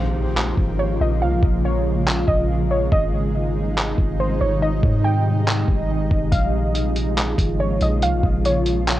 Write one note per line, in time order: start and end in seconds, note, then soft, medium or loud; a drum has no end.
0.00 0.54 A#1 loud
0.00 2.88 C#3 medium
0.00 2.89 F3 medium
0.00 2.88 G#3 medium
0.00 2.88 A#3 medium
0.00 2.88 F4 medium
0.00 0.75 F5 loud
0.00 impact medium
0.37 clap loud
0.57 0.99 G#1 loud
0.57 kick loud
0.79 0.99 C#5 medium
1.00 1.23 A#1 loud
1.00 1.21 D#5 medium
1.22 1.34 C2 loud
1.22 1.62 F5 medium
1.32 1.42 A#1 medium
1.43 2.24 A#1 loud
1.43 kick medium
1.65 2.25 C#5 medium
2.08 clap loud
2.28 2.89 A#1 loud
2.28 2.68 D#5 medium
2.28 kick loud
2.71 2.91 C#5 medium
2.92 3.94 G#1 loud
2.92 6.29 C3 medium
2.92 6.29 D#3 medium
2.92 6.29 G3 medium
2.92 9.00 G#3 medium
2.92 6.29 D#4 medium
2.92 4.16 D#5 loud
2.92 kick loud
3.78 clap loud
3.98 4.39 G#1 loud
3.98 kick loud
4.20 4.40 C5 medium
4.41 4.82 G#1 loud
4.41 4.61 C#5 medium
4.62 5.02 D#5 loud
4.83 5.65 G#2 loud
4.83 kick loud
5.04 5.86 G5 medium
5.48 clap loud
5.68 6.09 G#1 loud
5.68 kick loud
6.11 6.31 G#1 loud
6.11 kick loud
6.32 7.35 A#1 loud
6.32 9.00 C#3 medium
6.32 9.00 F3 medium
6.32 9.00 A#3 medium
6.32 9.00 F4 medium
6.32 7.56 F5 loud
6.32 kick loud
6.32 closed hi-hat medium
6.75 closed hi-hat medium
6.96 closed hi-hat medium
7.17 clap loud
7.17 closed hi-hat medium
7.38 7.79 G#1 loud
7.38 kick loud
7.38 closed hi-hat medium
7.60 7.80 C#5 medium
7.81 8.04 A#1 loud
7.81 8.02 D#5 medium
7.81 closed hi-hat medium
8.02 8.14 C2 loud
8.02 8.43 F5 loud
8.02 closed hi-hat medium
8.13 8.23 A#1 loud
8.23 9.00 A#1 loud
8.23 kick medium
8.45 9.00 C#5 medium
8.45 closed hi-hat medium
8.66 closed hi-hat medium
8.87 clap loud
8.87 closed hi-hat medium